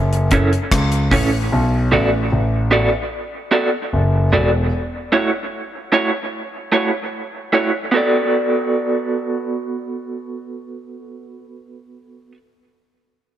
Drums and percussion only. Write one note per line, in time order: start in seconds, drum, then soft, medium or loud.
0.13 closed hi-hat soft
0.31 kick medium
0.31 closed hi-hat medium
0.53 closed hi-hat soft
0.72 kick loud
0.72 cross-stick loud
0.72 closed hi-hat medium
0.92 closed hi-hat soft
1.11 kick medium
1.11 open hi-hat medium